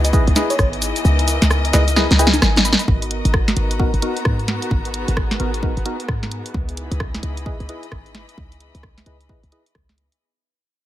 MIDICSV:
0, 0, Header, 1, 7, 480
1, 0, Start_track
1, 0, Tempo, 458015
1, 1097, Time_signature, 4, 2, 24, 8
1, 11373, End_track
2, 0, Start_track
2, 0, Title_t, "FM electric piano"
2, 0, Program_c, 0, 5
2, 46, Note_on_c, 0, 75, 75
2, 104, Note_off_c, 0, 75, 0
2, 526, Note_on_c, 0, 73, 90
2, 584, Note_off_c, 0, 73, 0
2, 1818, Note_on_c, 0, 75, 97
2, 2026, Note_off_c, 0, 75, 0
2, 2296, Note_on_c, 0, 80, 94
2, 2758, Note_off_c, 0, 80, 0
2, 2776, Note_on_c, 0, 83, 88
2, 2872, Note_off_c, 0, 83, 0
2, 2925, Note_on_c, 0, 83, 76
2, 2984, Note_off_c, 0, 83, 0
2, 11373, End_track
3, 0, Start_track
3, 0, Title_t, "Synth stab"
3, 0, Program_c, 1, 62
3, 137, Note_on_c, 1, 64, 84
3, 138, Note_on_c, 1, 68, 73
3, 138, Note_on_c, 1, 71, 74
3, 138, Note_on_c, 1, 75, 92
3, 256, Note_off_c, 1, 64, 0
3, 256, Note_off_c, 1, 68, 0
3, 256, Note_off_c, 1, 71, 0
3, 256, Note_off_c, 1, 75, 0
3, 377, Note_on_c, 1, 64, 86
3, 377, Note_on_c, 1, 75, 97
3, 378, Note_on_c, 1, 68, 81
3, 378, Note_on_c, 1, 71, 80
3, 551, Note_off_c, 1, 64, 0
3, 551, Note_off_c, 1, 68, 0
3, 551, Note_off_c, 1, 71, 0
3, 551, Note_off_c, 1, 75, 0
3, 1816, Note_on_c, 1, 64, 76
3, 1816, Note_on_c, 1, 68, 70
3, 1816, Note_on_c, 1, 71, 73
3, 1816, Note_on_c, 1, 75, 86
3, 1935, Note_off_c, 1, 64, 0
3, 1935, Note_off_c, 1, 68, 0
3, 1935, Note_off_c, 1, 71, 0
3, 1935, Note_off_c, 1, 75, 0
3, 2057, Note_on_c, 1, 64, 82
3, 2057, Note_on_c, 1, 68, 76
3, 2057, Note_on_c, 1, 71, 76
3, 2057, Note_on_c, 1, 75, 94
3, 2175, Note_off_c, 1, 64, 0
3, 2175, Note_off_c, 1, 68, 0
3, 2175, Note_off_c, 1, 71, 0
3, 2175, Note_off_c, 1, 75, 0
3, 2295, Note_on_c, 1, 71, 84
3, 2296, Note_on_c, 1, 64, 87
3, 2296, Note_on_c, 1, 68, 80
3, 2296, Note_on_c, 1, 75, 99
3, 2415, Note_off_c, 1, 64, 0
3, 2415, Note_off_c, 1, 68, 0
3, 2415, Note_off_c, 1, 71, 0
3, 2415, Note_off_c, 1, 75, 0
3, 3977, Note_on_c, 1, 59, 80
3, 3977, Note_on_c, 1, 63, 74
3, 3977, Note_on_c, 1, 66, 73
3, 3977, Note_on_c, 1, 70, 88
3, 4095, Note_off_c, 1, 59, 0
3, 4095, Note_off_c, 1, 63, 0
3, 4095, Note_off_c, 1, 66, 0
3, 4095, Note_off_c, 1, 70, 0
3, 4216, Note_on_c, 1, 63, 75
3, 4217, Note_on_c, 1, 59, 86
3, 4217, Note_on_c, 1, 66, 79
3, 4217, Note_on_c, 1, 70, 92
3, 4390, Note_off_c, 1, 63, 0
3, 4390, Note_off_c, 1, 66, 0
3, 4391, Note_off_c, 1, 59, 0
3, 4391, Note_off_c, 1, 70, 0
3, 5655, Note_on_c, 1, 59, 72
3, 5655, Note_on_c, 1, 63, 70
3, 5655, Note_on_c, 1, 66, 68
3, 5655, Note_on_c, 1, 70, 82
3, 5774, Note_off_c, 1, 59, 0
3, 5774, Note_off_c, 1, 63, 0
3, 5774, Note_off_c, 1, 66, 0
3, 5774, Note_off_c, 1, 70, 0
3, 5895, Note_on_c, 1, 59, 83
3, 5895, Note_on_c, 1, 66, 73
3, 5895, Note_on_c, 1, 70, 88
3, 5896, Note_on_c, 1, 63, 72
3, 6014, Note_off_c, 1, 70, 0
3, 6015, Note_off_c, 1, 59, 0
3, 6015, Note_off_c, 1, 63, 0
3, 6015, Note_off_c, 1, 66, 0
3, 6136, Note_on_c, 1, 59, 88
3, 6136, Note_on_c, 1, 70, 92
3, 6137, Note_on_c, 1, 63, 77
3, 6137, Note_on_c, 1, 66, 78
3, 6255, Note_off_c, 1, 59, 0
3, 6255, Note_off_c, 1, 63, 0
3, 6255, Note_off_c, 1, 66, 0
3, 6255, Note_off_c, 1, 70, 0
3, 7818, Note_on_c, 1, 64, 82
3, 7818, Note_on_c, 1, 68, 73
3, 7818, Note_on_c, 1, 71, 71
3, 7818, Note_on_c, 1, 75, 88
3, 7936, Note_off_c, 1, 64, 0
3, 7936, Note_off_c, 1, 68, 0
3, 7936, Note_off_c, 1, 71, 0
3, 7936, Note_off_c, 1, 75, 0
3, 8059, Note_on_c, 1, 71, 75
3, 8060, Note_on_c, 1, 64, 85
3, 8060, Note_on_c, 1, 68, 76
3, 8060, Note_on_c, 1, 75, 90
3, 8232, Note_off_c, 1, 64, 0
3, 8232, Note_off_c, 1, 68, 0
3, 8232, Note_off_c, 1, 71, 0
3, 8232, Note_off_c, 1, 75, 0
3, 9499, Note_on_c, 1, 64, 72
3, 9499, Note_on_c, 1, 68, 66
3, 9499, Note_on_c, 1, 71, 67
3, 9499, Note_on_c, 1, 75, 80
3, 9616, Note_off_c, 1, 64, 0
3, 9617, Note_off_c, 1, 68, 0
3, 9617, Note_off_c, 1, 71, 0
3, 9617, Note_off_c, 1, 75, 0
3, 9738, Note_on_c, 1, 64, 79
3, 9738, Note_on_c, 1, 71, 71
3, 9738, Note_on_c, 1, 75, 85
3, 9739, Note_on_c, 1, 68, 75
3, 9856, Note_off_c, 1, 64, 0
3, 9856, Note_off_c, 1, 68, 0
3, 9856, Note_off_c, 1, 71, 0
3, 9856, Note_off_c, 1, 75, 0
3, 9978, Note_on_c, 1, 64, 81
3, 9978, Note_on_c, 1, 68, 75
3, 9978, Note_on_c, 1, 71, 76
3, 9978, Note_on_c, 1, 75, 89
3, 10096, Note_off_c, 1, 64, 0
3, 10096, Note_off_c, 1, 68, 0
3, 10096, Note_off_c, 1, 71, 0
3, 10096, Note_off_c, 1, 75, 0
3, 11373, End_track
4, 0, Start_track
4, 0, Title_t, "String section"
4, 0, Program_c, 2, 48
4, 0, Note_on_c, 2, 52, 82
4, 0, Note_on_c, 2, 59, 82
4, 0, Note_on_c, 2, 66, 94
4, 0, Note_on_c, 2, 75, 82
4, 336, Note_off_c, 2, 66, 0
4, 736, Note_off_c, 2, 59, 0
4, 3018, Note_off_c, 2, 52, 0
4, 3018, Note_on_c, 2, 66, 83
4, 3262, Note_on_c, 2, 82, 67
4, 3595, Note_on_c, 2, 59, 86
4, 4575, Note_off_c, 2, 75, 0
4, 6858, Note_on_c, 2, 52, 72
4, 6859, Note_off_c, 2, 82, 0
4, 7100, Note_on_c, 2, 83, 86
4, 7232, Note_on_c, 2, 75, 72
4, 7521, Note_off_c, 2, 66, 0
4, 8023, Note_off_c, 2, 59, 0
4, 10696, Note_off_c, 2, 83, 0
4, 10698, Note_off_c, 2, 52, 0
4, 10699, Note_off_c, 2, 75, 0
4, 11373, End_track
5, 0, Start_track
5, 0, Title_t, "Analog synth pad"
5, 0, Program_c, 3, 89
5, 0, Note_on_c, 3, 59, 83
5, 0, Note_on_c, 3, 63, 76
5, 0, Note_on_c, 3, 64, 78
5, 0, Note_on_c, 3, 68, 93
5, 1078, Note_off_c, 3, 68, 0
5, 1097, Note_on_c, 3, 70, 91
5, 2975, Note_off_c, 3, 59, 0
5, 2978, Note_off_c, 3, 64, 0
5, 2979, Note_off_c, 3, 63, 0
5, 2998, Note_off_c, 3, 70, 0
5, 3020, Note_on_c, 3, 66, 74
5, 3021, Note_on_c, 3, 59, 82
5, 3021, Note_on_c, 3, 63, 72
5, 3022, Note_on_c, 3, 70, 88
5, 4920, Note_off_c, 3, 66, 0
5, 4937, Note_on_c, 3, 68, 76
5, 6821, Note_off_c, 3, 63, 0
5, 6821, Note_off_c, 3, 70, 0
5, 6838, Note_off_c, 3, 68, 0
5, 6857, Note_on_c, 3, 63, 76
5, 6857, Note_on_c, 3, 64, 72
5, 6858, Note_on_c, 3, 68, 88
5, 10657, Note_off_c, 3, 59, 0
5, 10659, Note_off_c, 3, 63, 0
5, 10659, Note_off_c, 3, 64, 0
5, 10660, Note_off_c, 3, 68, 0
5, 11373, End_track
6, 0, Start_track
6, 0, Title_t, "808-style bass"
6, 0, Program_c, 4, 38
6, 0, Note_on_c, 4, 37, 91
6, 248, Note_off_c, 4, 37, 0
6, 289, Note_on_c, 4, 37, 95
6, 364, Note_off_c, 4, 37, 0
6, 618, Note_on_c, 4, 32, 92
6, 968, Note_off_c, 4, 32, 0
6, 1099, Note_on_c, 4, 37, 101
6, 1449, Note_off_c, 4, 37, 0
6, 1489, Note_on_c, 4, 37, 105
6, 1795, Note_off_c, 4, 37, 0
6, 1820, Note_on_c, 4, 37, 93
6, 2169, Note_off_c, 4, 37, 0
6, 2210, Note_on_c, 4, 37, 98
6, 2515, Note_off_c, 4, 37, 0
6, 2539, Note_on_c, 4, 32, 101
6, 2888, Note_off_c, 4, 32, 0
6, 3018, Note_on_c, 4, 32, 96
6, 3368, Note_off_c, 4, 32, 0
6, 3407, Note_on_c, 4, 32, 99
6, 3714, Note_off_c, 4, 32, 0
6, 3736, Note_on_c, 4, 32, 87
6, 4087, Note_off_c, 4, 32, 0
6, 4126, Note_on_c, 4, 32, 92
6, 4202, Note_off_c, 4, 32, 0
6, 4458, Note_on_c, 4, 44, 86
6, 4808, Note_off_c, 4, 44, 0
6, 4937, Note_on_c, 4, 32, 101
6, 5288, Note_off_c, 4, 32, 0
6, 5327, Note_on_c, 4, 32, 102
6, 5634, Note_off_c, 4, 32, 0
6, 5658, Note_on_c, 4, 32, 88
6, 6008, Note_off_c, 4, 32, 0
6, 6049, Note_on_c, 4, 32, 90
6, 6123, Note_off_c, 4, 32, 0
6, 6377, Note_on_c, 4, 44, 88
6, 6728, Note_off_c, 4, 44, 0
6, 6858, Note_on_c, 4, 37, 96
6, 7208, Note_off_c, 4, 37, 0
6, 7246, Note_on_c, 4, 37, 100
6, 7553, Note_off_c, 4, 37, 0
6, 7578, Note_on_c, 4, 37, 86
6, 7928, Note_off_c, 4, 37, 0
6, 7967, Note_on_c, 4, 37, 91
6, 8043, Note_off_c, 4, 37, 0
6, 8299, Note_on_c, 4, 32, 88
6, 8649, Note_off_c, 4, 32, 0
6, 8779, Note_on_c, 4, 37, 96
6, 9129, Note_off_c, 4, 37, 0
6, 9167, Note_on_c, 4, 37, 98
6, 9474, Note_off_c, 4, 37, 0
6, 9498, Note_on_c, 4, 37, 87
6, 9848, Note_off_c, 4, 37, 0
6, 9887, Note_on_c, 4, 37, 91
6, 9963, Note_off_c, 4, 37, 0
6, 10219, Note_on_c, 4, 37, 94
6, 10569, Note_off_c, 4, 37, 0
6, 11373, End_track
7, 0, Start_track
7, 0, Title_t, "Drums"
7, 48, Note_on_c, 9, 42, 71
7, 48, Note_on_c, 9, 69, 44
7, 138, Note_on_c, 9, 36, 119
7, 139, Note_off_c, 9, 69, 0
7, 139, Note_on_c, 9, 69, 33
7, 153, Note_off_c, 9, 42, 0
7, 243, Note_off_c, 9, 36, 0
7, 244, Note_off_c, 9, 69, 0
7, 287, Note_on_c, 9, 42, 38
7, 378, Note_off_c, 9, 42, 0
7, 378, Note_on_c, 9, 40, 57
7, 378, Note_on_c, 9, 42, 109
7, 378, Note_on_c, 9, 63, 80
7, 378, Note_on_c, 9, 69, 79
7, 482, Note_off_c, 9, 40, 0
7, 482, Note_off_c, 9, 42, 0
7, 482, Note_off_c, 9, 63, 0
7, 482, Note_off_c, 9, 69, 0
7, 526, Note_on_c, 9, 42, 70
7, 526, Note_on_c, 9, 69, 46
7, 617, Note_off_c, 9, 69, 0
7, 617, Note_on_c, 9, 37, 119
7, 617, Note_on_c, 9, 69, 34
7, 618, Note_on_c, 9, 36, 114
7, 631, Note_off_c, 9, 42, 0
7, 722, Note_off_c, 9, 37, 0
7, 722, Note_off_c, 9, 69, 0
7, 723, Note_off_c, 9, 36, 0
7, 767, Note_on_c, 9, 42, 40
7, 858, Note_off_c, 9, 42, 0
7, 858, Note_on_c, 9, 42, 96
7, 858, Note_on_c, 9, 69, 77
7, 963, Note_off_c, 9, 42, 0
7, 963, Note_off_c, 9, 69, 0
7, 1007, Note_on_c, 9, 42, 72
7, 1007, Note_on_c, 9, 69, 43
7, 1099, Note_off_c, 9, 69, 0
7, 1099, Note_on_c, 9, 69, 32
7, 1112, Note_off_c, 9, 42, 0
7, 1204, Note_off_c, 9, 69, 0
7, 1248, Note_on_c, 9, 42, 57
7, 1338, Note_off_c, 9, 42, 0
7, 1338, Note_on_c, 9, 42, 116
7, 1338, Note_on_c, 9, 69, 73
7, 1443, Note_off_c, 9, 42, 0
7, 1443, Note_off_c, 9, 69, 0
7, 1488, Note_on_c, 9, 40, 72
7, 1488, Note_on_c, 9, 42, 71
7, 1488, Note_on_c, 9, 69, 44
7, 1578, Note_off_c, 9, 69, 0
7, 1578, Note_on_c, 9, 37, 115
7, 1578, Note_on_c, 9, 69, 32
7, 1593, Note_off_c, 9, 40, 0
7, 1593, Note_off_c, 9, 42, 0
7, 1682, Note_off_c, 9, 37, 0
7, 1682, Note_off_c, 9, 69, 0
7, 1727, Note_on_c, 9, 42, 57
7, 1818, Note_off_c, 9, 42, 0
7, 1818, Note_on_c, 9, 40, 55
7, 1818, Note_on_c, 9, 42, 101
7, 1818, Note_on_c, 9, 69, 75
7, 1922, Note_off_c, 9, 40, 0
7, 1922, Note_off_c, 9, 42, 0
7, 1922, Note_off_c, 9, 69, 0
7, 1968, Note_on_c, 9, 42, 67
7, 1968, Note_on_c, 9, 69, 42
7, 2058, Note_off_c, 9, 69, 0
7, 2058, Note_on_c, 9, 38, 67
7, 2058, Note_on_c, 9, 69, 32
7, 2073, Note_off_c, 9, 42, 0
7, 2163, Note_off_c, 9, 38, 0
7, 2163, Note_off_c, 9, 69, 0
7, 2208, Note_on_c, 9, 42, 38
7, 2218, Note_on_c, 9, 38, 76
7, 2298, Note_off_c, 9, 42, 0
7, 2298, Note_on_c, 9, 42, 110
7, 2298, Note_on_c, 9, 69, 78
7, 2323, Note_off_c, 9, 38, 0
7, 2378, Note_on_c, 9, 38, 87
7, 2403, Note_off_c, 9, 42, 0
7, 2403, Note_off_c, 9, 69, 0
7, 2447, Note_on_c, 9, 42, 71
7, 2447, Note_on_c, 9, 63, 79
7, 2447, Note_on_c, 9, 69, 43
7, 2483, Note_off_c, 9, 38, 0
7, 2537, Note_off_c, 9, 69, 0
7, 2537, Note_on_c, 9, 37, 120
7, 2537, Note_on_c, 9, 38, 90
7, 2537, Note_on_c, 9, 69, 33
7, 2552, Note_off_c, 9, 42, 0
7, 2552, Note_off_c, 9, 63, 0
7, 2642, Note_off_c, 9, 37, 0
7, 2642, Note_off_c, 9, 38, 0
7, 2642, Note_off_c, 9, 69, 0
7, 2687, Note_on_c, 9, 42, 39
7, 2687, Note_on_c, 9, 63, 60
7, 2697, Note_on_c, 9, 38, 97
7, 2777, Note_off_c, 9, 42, 0
7, 2777, Note_on_c, 9, 42, 98
7, 2777, Note_on_c, 9, 69, 74
7, 2792, Note_off_c, 9, 63, 0
7, 2801, Note_off_c, 9, 38, 0
7, 2856, Note_on_c, 9, 38, 102
7, 2882, Note_off_c, 9, 42, 0
7, 2882, Note_off_c, 9, 69, 0
7, 2927, Note_on_c, 9, 42, 70
7, 2927, Note_on_c, 9, 69, 43
7, 2961, Note_off_c, 9, 38, 0
7, 3018, Note_on_c, 9, 36, 113
7, 3032, Note_off_c, 9, 42, 0
7, 3032, Note_off_c, 9, 69, 0
7, 3123, Note_off_c, 9, 36, 0
7, 3167, Note_on_c, 9, 42, 54
7, 3257, Note_off_c, 9, 42, 0
7, 3257, Note_on_c, 9, 42, 107
7, 3362, Note_off_c, 9, 42, 0
7, 3407, Note_on_c, 9, 42, 64
7, 3497, Note_on_c, 9, 37, 116
7, 3498, Note_on_c, 9, 36, 115
7, 3512, Note_off_c, 9, 42, 0
7, 3602, Note_off_c, 9, 36, 0
7, 3602, Note_off_c, 9, 37, 0
7, 3647, Note_on_c, 9, 40, 65
7, 3647, Note_on_c, 9, 42, 50
7, 3737, Note_off_c, 9, 42, 0
7, 3737, Note_on_c, 9, 42, 95
7, 3752, Note_off_c, 9, 40, 0
7, 3841, Note_off_c, 9, 42, 0
7, 3887, Note_on_c, 9, 42, 64
7, 3977, Note_on_c, 9, 36, 113
7, 3991, Note_off_c, 9, 42, 0
7, 4082, Note_off_c, 9, 36, 0
7, 4127, Note_on_c, 9, 42, 35
7, 4216, Note_off_c, 9, 42, 0
7, 4216, Note_on_c, 9, 42, 105
7, 4321, Note_off_c, 9, 42, 0
7, 4366, Note_on_c, 9, 42, 63
7, 4455, Note_on_c, 9, 37, 117
7, 4457, Note_on_c, 9, 36, 114
7, 4471, Note_off_c, 9, 42, 0
7, 4560, Note_off_c, 9, 37, 0
7, 4562, Note_off_c, 9, 36, 0
7, 4605, Note_on_c, 9, 42, 36
7, 4696, Note_off_c, 9, 42, 0
7, 4696, Note_on_c, 9, 40, 57
7, 4696, Note_on_c, 9, 42, 89
7, 4801, Note_off_c, 9, 40, 0
7, 4801, Note_off_c, 9, 42, 0
7, 4845, Note_on_c, 9, 42, 63
7, 4937, Note_on_c, 9, 36, 118
7, 4950, Note_off_c, 9, 42, 0
7, 5042, Note_off_c, 9, 36, 0
7, 5085, Note_on_c, 9, 42, 49
7, 5176, Note_off_c, 9, 42, 0
7, 5176, Note_on_c, 9, 42, 102
7, 5281, Note_off_c, 9, 42, 0
7, 5325, Note_on_c, 9, 42, 60
7, 5416, Note_on_c, 9, 36, 118
7, 5416, Note_on_c, 9, 37, 116
7, 5430, Note_off_c, 9, 42, 0
7, 5521, Note_off_c, 9, 36, 0
7, 5521, Note_off_c, 9, 37, 0
7, 5566, Note_on_c, 9, 40, 66
7, 5566, Note_on_c, 9, 42, 46
7, 5657, Note_off_c, 9, 42, 0
7, 5657, Note_on_c, 9, 42, 89
7, 5671, Note_off_c, 9, 40, 0
7, 5762, Note_off_c, 9, 42, 0
7, 5807, Note_on_c, 9, 42, 59
7, 5897, Note_on_c, 9, 36, 118
7, 5912, Note_off_c, 9, 42, 0
7, 6001, Note_off_c, 9, 36, 0
7, 6047, Note_on_c, 9, 42, 34
7, 6137, Note_off_c, 9, 42, 0
7, 6137, Note_on_c, 9, 42, 100
7, 6241, Note_off_c, 9, 42, 0
7, 6287, Note_on_c, 9, 42, 59
7, 6377, Note_on_c, 9, 36, 113
7, 6377, Note_on_c, 9, 37, 123
7, 6391, Note_off_c, 9, 42, 0
7, 6482, Note_off_c, 9, 36, 0
7, 6482, Note_off_c, 9, 37, 0
7, 6528, Note_on_c, 9, 40, 50
7, 6528, Note_on_c, 9, 42, 34
7, 6618, Note_off_c, 9, 42, 0
7, 6618, Note_on_c, 9, 42, 88
7, 6632, Note_off_c, 9, 40, 0
7, 6723, Note_off_c, 9, 42, 0
7, 6767, Note_on_c, 9, 42, 60
7, 6857, Note_on_c, 9, 36, 116
7, 6872, Note_off_c, 9, 42, 0
7, 6962, Note_off_c, 9, 36, 0
7, 7008, Note_on_c, 9, 42, 47
7, 7098, Note_off_c, 9, 42, 0
7, 7098, Note_on_c, 9, 42, 94
7, 7203, Note_off_c, 9, 42, 0
7, 7247, Note_on_c, 9, 42, 58
7, 7337, Note_on_c, 9, 37, 117
7, 7338, Note_on_c, 9, 36, 121
7, 7352, Note_off_c, 9, 42, 0
7, 7442, Note_off_c, 9, 36, 0
7, 7442, Note_off_c, 9, 37, 0
7, 7488, Note_on_c, 9, 40, 62
7, 7488, Note_on_c, 9, 42, 45
7, 7577, Note_off_c, 9, 42, 0
7, 7577, Note_on_c, 9, 42, 85
7, 7593, Note_off_c, 9, 40, 0
7, 7682, Note_off_c, 9, 42, 0
7, 7727, Note_on_c, 9, 42, 58
7, 7818, Note_on_c, 9, 36, 116
7, 7832, Note_off_c, 9, 42, 0
7, 7923, Note_off_c, 9, 36, 0
7, 7968, Note_on_c, 9, 42, 33
7, 8058, Note_off_c, 9, 42, 0
7, 8058, Note_on_c, 9, 42, 96
7, 8163, Note_off_c, 9, 42, 0
7, 8207, Note_on_c, 9, 42, 58
7, 8297, Note_on_c, 9, 37, 117
7, 8298, Note_on_c, 9, 36, 115
7, 8311, Note_off_c, 9, 42, 0
7, 8401, Note_off_c, 9, 37, 0
7, 8403, Note_off_c, 9, 36, 0
7, 8448, Note_on_c, 9, 42, 31
7, 8537, Note_off_c, 9, 42, 0
7, 8537, Note_on_c, 9, 40, 52
7, 8537, Note_on_c, 9, 42, 83
7, 8642, Note_off_c, 9, 40, 0
7, 8642, Note_off_c, 9, 42, 0
7, 8687, Note_on_c, 9, 42, 58
7, 8779, Note_on_c, 9, 36, 111
7, 8792, Note_off_c, 9, 42, 0
7, 8884, Note_off_c, 9, 36, 0
7, 8928, Note_on_c, 9, 42, 48
7, 9018, Note_off_c, 9, 42, 0
7, 9018, Note_on_c, 9, 42, 92
7, 9122, Note_off_c, 9, 42, 0
7, 9167, Note_on_c, 9, 42, 59
7, 9257, Note_on_c, 9, 37, 112
7, 9259, Note_on_c, 9, 36, 113
7, 9272, Note_off_c, 9, 42, 0
7, 9361, Note_off_c, 9, 37, 0
7, 9364, Note_off_c, 9, 36, 0
7, 9407, Note_on_c, 9, 40, 58
7, 9407, Note_on_c, 9, 42, 46
7, 9497, Note_off_c, 9, 42, 0
7, 9497, Note_on_c, 9, 42, 81
7, 9512, Note_off_c, 9, 40, 0
7, 9601, Note_off_c, 9, 42, 0
7, 9647, Note_on_c, 9, 42, 56
7, 9739, Note_on_c, 9, 36, 111
7, 9752, Note_off_c, 9, 42, 0
7, 9844, Note_off_c, 9, 36, 0
7, 9887, Note_on_c, 9, 42, 32
7, 9978, Note_off_c, 9, 42, 0
7, 9978, Note_on_c, 9, 42, 91
7, 10083, Note_off_c, 9, 42, 0
7, 10128, Note_on_c, 9, 42, 60
7, 10218, Note_on_c, 9, 37, 116
7, 10219, Note_on_c, 9, 36, 108
7, 10232, Note_off_c, 9, 42, 0
7, 10322, Note_off_c, 9, 37, 0
7, 10324, Note_off_c, 9, 36, 0
7, 10368, Note_on_c, 9, 40, 46
7, 10368, Note_on_c, 9, 42, 32
7, 10458, Note_off_c, 9, 42, 0
7, 10458, Note_on_c, 9, 42, 77
7, 10472, Note_off_c, 9, 40, 0
7, 10563, Note_off_c, 9, 42, 0
7, 10608, Note_on_c, 9, 42, 59
7, 10713, Note_off_c, 9, 42, 0
7, 11373, End_track
0, 0, End_of_file